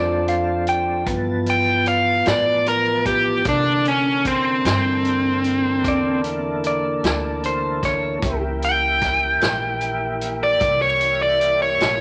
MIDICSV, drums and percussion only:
0, 0, Header, 1, 2, 480
1, 0, Start_track
1, 0, Tempo, 795756
1, 2083, Time_signature, 12, 3, 24, 8
1, 7243, End_track
2, 0, Start_track
2, 0, Title_t, "Drums"
2, 168, Note_on_c, 9, 42, 47
2, 228, Note_off_c, 9, 42, 0
2, 403, Note_on_c, 9, 42, 46
2, 463, Note_off_c, 9, 42, 0
2, 642, Note_on_c, 9, 42, 63
2, 643, Note_on_c, 9, 36, 80
2, 702, Note_off_c, 9, 42, 0
2, 703, Note_off_c, 9, 36, 0
2, 882, Note_on_c, 9, 42, 48
2, 942, Note_off_c, 9, 42, 0
2, 1121, Note_on_c, 9, 42, 45
2, 1181, Note_off_c, 9, 42, 0
2, 1361, Note_on_c, 9, 42, 65
2, 1368, Note_on_c, 9, 38, 86
2, 1422, Note_off_c, 9, 42, 0
2, 1428, Note_off_c, 9, 38, 0
2, 1606, Note_on_c, 9, 42, 47
2, 1667, Note_off_c, 9, 42, 0
2, 1843, Note_on_c, 9, 36, 56
2, 1843, Note_on_c, 9, 42, 49
2, 1903, Note_off_c, 9, 36, 0
2, 1903, Note_off_c, 9, 42, 0
2, 2080, Note_on_c, 9, 42, 65
2, 2083, Note_on_c, 9, 36, 86
2, 2141, Note_off_c, 9, 42, 0
2, 2144, Note_off_c, 9, 36, 0
2, 2323, Note_on_c, 9, 42, 46
2, 2383, Note_off_c, 9, 42, 0
2, 2563, Note_on_c, 9, 42, 54
2, 2564, Note_on_c, 9, 36, 65
2, 2623, Note_off_c, 9, 42, 0
2, 2624, Note_off_c, 9, 36, 0
2, 2805, Note_on_c, 9, 42, 67
2, 2812, Note_on_c, 9, 38, 86
2, 2866, Note_off_c, 9, 42, 0
2, 2872, Note_off_c, 9, 38, 0
2, 3044, Note_on_c, 9, 42, 51
2, 3105, Note_off_c, 9, 42, 0
2, 3282, Note_on_c, 9, 42, 51
2, 3342, Note_off_c, 9, 42, 0
2, 3524, Note_on_c, 9, 36, 76
2, 3525, Note_on_c, 9, 42, 60
2, 3585, Note_off_c, 9, 36, 0
2, 3585, Note_off_c, 9, 42, 0
2, 3764, Note_on_c, 9, 42, 48
2, 3824, Note_off_c, 9, 42, 0
2, 4004, Note_on_c, 9, 42, 46
2, 4064, Note_off_c, 9, 42, 0
2, 4246, Note_on_c, 9, 42, 59
2, 4252, Note_on_c, 9, 38, 87
2, 4306, Note_off_c, 9, 42, 0
2, 4313, Note_off_c, 9, 38, 0
2, 4485, Note_on_c, 9, 42, 46
2, 4545, Note_off_c, 9, 42, 0
2, 4722, Note_on_c, 9, 36, 61
2, 4723, Note_on_c, 9, 42, 43
2, 4730, Note_on_c, 9, 38, 24
2, 4783, Note_off_c, 9, 36, 0
2, 4784, Note_off_c, 9, 42, 0
2, 4790, Note_off_c, 9, 38, 0
2, 4960, Note_on_c, 9, 42, 63
2, 4961, Note_on_c, 9, 36, 89
2, 5020, Note_off_c, 9, 42, 0
2, 5022, Note_off_c, 9, 36, 0
2, 5201, Note_on_c, 9, 42, 46
2, 5261, Note_off_c, 9, 42, 0
2, 5438, Note_on_c, 9, 42, 53
2, 5439, Note_on_c, 9, 36, 65
2, 5445, Note_on_c, 9, 38, 26
2, 5498, Note_off_c, 9, 42, 0
2, 5500, Note_off_c, 9, 36, 0
2, 5505, Note_off_c, 9, 38, 0
2, 5678, Note_on_c, 9, 42, 64
2, 5685, Note_on_c, 9, 38, 89
2, 5739, Note_off_c, 9, 42, 0
2, 5745, Note_off_c, 9, 38, 0
2, 5916, Note_on_c, 9, 42, 48
2, 5977, Note_off_c, 9, 42, 0
2, 6160, Note_on_c, 9, 42, 54
2, 6221, Note_off_c, 9, 42, 0
2, 6399, Note_on_c, 9, 36, 84
2, 6399, Note_on_c, 9, 42, 63
2, 6459, Note_off_c, 9, 42, 0
2, 6460, Note_off_c, 9, 36, 0
2, 6639, Note_on_c, 9, 42, 54
2, 6699, Note_off_c, 9, 42, 0
2, 6882, Note_on_c, 9, 42, 50
2, 6942, Note_off_c, 9, 42, 0
2, 7120, Note_on_c, 9, 42, 65
2, 7127, Note_on_c, 9, 38, 84
2, 7180, Note_off_c, 9, 42, 0
2, 7187, Note_off_c, 9, 38, 0
2, 7243, End_track
0, 0, End_of_file